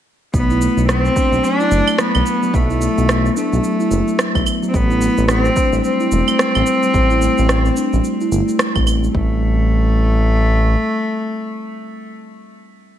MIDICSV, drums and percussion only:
0, 0, Header, 1, 2, 480
1, 0, Start_track
1, 0, Tempo, 550459
1, 293, Time_signature, 4, 2, 24, 8
1, 11326, End_track
2, 0, Start_track
2, 0, Title_t, "Drums"
2, 293, Note_on_c, 9, 36, 105
2, 296, Note_on_c, 9, 82, 44
2, 380, Note_off_c, 9, 36, 0
2, 383, Note_off_c, 9, 82, 0
2, 439, Note_on_c, 9, 82, 23
2, 526, Note_off_c, 9, 82, 0
2, 537, Note_on_c, 9, 82, 72
2, 624, Note_off_c, 9, 82, 0
2, 676, Note_on_c, 9, 82, 32
2, 763, Note_off_c, 9, 82, 0
2, 775, Note_on_c, 9, 37, 91
2, 777, Note_on_c, 9, 82, 39
2, 862, Note_off_c, 9, 37, 0
2, 864, Note_off_c, 9, 82, 0
2, 917, Note_on_c, 9, 82, 20
2, 1005, Note_off_c, 9, 82, 0
2, 1013, Note_on_c, 9, 36, 96
2, 1016, Note_on_c, 9, 82, 72
2, 1100, Note_off_c, 9, 36, 0
2, 1104, Note_off_c, 9, 82, 0
2, 1157, Note_on_c, 9, 82, 31
2, 1244, Note_off_c, 9, 82, 0
2, 1256, Note_on_c, 9, 82, 44
2, 1343, Note_off_c, 9, 82, 0
2, 1397, Note_on_c, 9, 82, 20
2, 1484, Note_off_c, 9, 82, 0
2, 1494, Note_on_c, 9, 82, 65
2, 1581, Note_off_c, 9, 82, 0
2, 1634, Note_on_c, 9, 75, 78
2, 1637, Note_on_c, 9, 82, 34
2, 1722, Note_off_c, 9, 75, 0
2, 1724, Note_off_c, 9, 82, 0
2, 1731, Note_on_c, 9, 37, 104
2, 1733, Note_on_c, 9, 82, 44
2, 1818, Note_off_c, 9, 37, 0
2, 1820, Note_off_c, 9, 82, 0
2, 1873, Note_on_c, 9, 75, 67
2, 1875, Note_on_c, 9, 82, 20
2, 1960, Note_off_c, 9, 75, 0
2, 1962, Note_off_c, 9, 82, 0
2, 1972, Note_on_c, 9, 82, 79
2, 2059, Note_off_c, 9, 82, 0
2, 2116, Note_on_c, 9, 82, 30
2, 2203, Note_off_c, 9, 82, 0
2, 2213, Note_on_c, 9, 36, 113
2, 2216, Note_on_c, 9, 82, 45
2, 2300, Note_off_c, 9, 36, 0
2, 2303, Note_off_c, 9, 82, 0
2, 2358, Note_on_c, 9, 82, 23
2, 2445, Note_off_c, 9, 82, 0
2, 2454, Note_on_c, 9, 82, 79
2, 2541, Note_off_c, 9, 82, 0
2, 2598, Note_on_c, 9, 82, 31
2, 2685, Note_off_c, 9, 82, 0
2, 2694, Note_on_c, 9, 37, 99
2, 2696, Note_on_c, 9, 82, 44
2, 2781, Note_off_c, 9, 37, 0
2, 2783, Note_off_c, 9, 82, 0
2, 2840, Note_on_c, 9, 82, 23
2, 2927, Note_off_c, 9, 82, 0
2, 2937, Note_on_c, 9, 82, 73
2, 3024, Note_off_c, 9, 82, 0
2, 3078, Note_on_c, 9, 82, 33
2, 3166, Note_off_c, 9, 82, 0
2, 3173, Note_on_c, 9, 82, 46
2, 3260, Note_off_c, 9, 82, 0
2, 3315, Note_on_c, 9, 82, 23
2, 3402, Note_off_c, 9, 82, 0
2, 3412, Note_on_c, 9, 82, 68
2, 3499, Note_off_c, 9, 82, 0
2, 3556, Note_on_c, 9, 82, 34
2, 3643, Note_off_c, 9, 82, 0
2, 3652, Note_on_c, 9, 37, 107
2, 3654, Note_on_c, 9, 82, 50
2, 3739, Note_off_c, 9, 37, 0
2, 3741, Note_off_c, 9, 82, 0
2, 3794, Note_on_c, 9, 36, 105
2, 3796, Note_on_c, 9, 75, 69
2, 3798, Note_on_c, 9, 82, 21
2, 3882, Note_off_c, 9, 36, 0
2, 3883, Note_off_c, 9, 75, 0
2, 3885, Note_off_c, 9, 82, 0
2, 3893, Note_on_c, 9, 75, 78
2, 3895, Note_on_c, 9, 82, 78
2, 3980, Note_off_c, 9, 75, 0
2, 3982, Note_off_c, 9, 82, 0
2, 4038, Note_on_c, 9, 82, 32
2, 4125, Note_off_c, 9, 82, 0
2, 4132, Note_on_c, 9, 36, 119
2, 4134, Note_on_c, 9, 82, 44
2, 4220, Note_off_c, 9, 36, 0
2, 4222, Note_off_c, 9, 82, 0
2, 4276, Note_on_c, 9, 82, 25
2, 4363, Note_off_c, 9, 82, 0
2, 4372, Note_on_c, 9, 82, 77
2, 4459, Note_off_c, 9, 82, 0
2, 4514, Note_on_c, 9, 82, 35
2, 4601, Note_off_c, 9, 82, 0
2, 4608, Note_on_c, 9, 37, 95
2, 4611, Note_on_c, 9, 82, 46
2, 4696, Note_off_c, 9, 37, 0
2, 4698, Note_off_c, 9, 82, 0
2, 4753, Note_on_c, 9, 82, 23
2, 4840, Note_off_c, 9, 82, 0
2, 4852, Note_on_c, 9, 36, 109
2, 4852, Note_on_c, 9, 82, 81
2, 4939, Note_off_c, 9, 36, 0
2, 4940, Note_off_c, 9, 82, 0
2, 4995, Note_on_c, 9, 82, 34
2, 5082, Note_off_c, 9, 82, 0
2, 5094, Note_on_c, 9, 82, 44
2, 5181, Note_off_c, 9, 82, 0
2, 5235, Note_on_c, 9, 82, 22
2, 5322, Note_off_c, 9, 82, 0
2, 5334, Note_on_c, 9, 82, 78
2, 5421, Note_off_c, 9, 82, 0
2, 5474, Note_on_c, 9, 75, 75
2, 5476, Note_on_c, 9, 82, 34
2, 5561, Note_off_c, 9, 75, 0
2, 5563, Note_off_c, 9, 82, 0
2, 5574, Note_on_c, 9, 37, 104
2, 5576, Note_on_c, 9, 82, 48
2, 5661, Note_off_c, 9, 37, 0
2, 5663, Note_off_c, 9, 82, 0
2, 5713, Note_on_c, 9, 75, 68
2, 5716, Note_on_c, 9, 82, 22
2, 5801, Note_off_c, 9, 75, 0
2, 5803, Note_off_c, 9, 82, 0
2, 5812, Note_on_c, 9, 82, 84
2, 5900, Note_off_c, 9, 82, 0
2, 5954, Note_on_c, 9, 82, 33
2, 6041, Note_off_c, 9, 82, 0
2, 6052, Note_on_c, 9, 82, 43
2, 6053, Note_on_c, 9, 36, 118
2, 6139, Note_off_c, 9, 82, 0
2, 6140, Note_off_c, 9, 36, 0
2, 6195, Note_on_c, 9, 82, 25
2, 6282, Note_off_c, 9, 82, 0
2, 6294, Note_on_c, 9, 82, 78
2, 6381, Note_off_c, 9, 82, 0
2, 6435, Note_on_c, 9, 82, 35
2, 6522, Note_off_c, 9, 82, 0
2, 6532, Note_on_c, 9, 37, 94
2, 6534, Note_on_c, 9, 82, 43
2, 6619, Note_off_c, 9, 37, 0
2, 6621, Note_off_c, 9, 82, 0
2, 6675, Note_on_c, 9, 82, 22
2, 6762, Note_off_c, 9, 82, 0
2, 6772, Note_on_c, 9, 82, 78
2, 6859, Note_off_c, 9, 82, 0
2, 6915, Note_on_c, 9, 82, 34
2, 7002, Note_off_c, 9, 82, 0
2, 7014, Note_on_c, 9, 82, 46
2, 7101, Note_off_c, 9, 82, 0
2, 7157, Note_on_c, 9, 82, 22
2, 7244, Note_off_c, 9, 82, 0
2, 7256, Note_on_c, 9, 82, 75
2, 7343, Note_off_c, 9, 82, 0
2, 7398, Note_on_c, 9, 82, 35
2, 7485, Note_off_c, 9, 82, 0
2, 7493, Note_on_c, 9, 37, 103
2, 7495, Note_on_c, 9, 82, 47
2, 7580, Note_off_c, 9, 37, 0
2, 7582, Note_off_c, 9, 82, 0
2, 7634, Note_on_c, 9, 75, 72
2, 7635, Note_on_c, 9, 36, 108
2, 7637, Note_on_c, 9, 82, 21
2, 7722, Note_off_c, 9, 75, 0
2, 7723, Note_off_c, 9, 36, 0
2, 7724, Note_off_c, 9, 82, 0
2, 7734, Note_on_c, 9, 75, 76
2, 7736, Note_on_c, 9, 82, 83
2, 7821, Note_off_c, 9, 75, 0
2, 7823, Note_off_c, 9, 82, 0
2, 7879, Note_on_c, 9, 82, 31
2, 7967, Note_off_c, 9, 82, 0
2, 7975, Note_on_c, 9, 36, 104
2, 8062, Note_off_c, 9, 36, 0
2, 11326, End_track
0, 0, End_of_file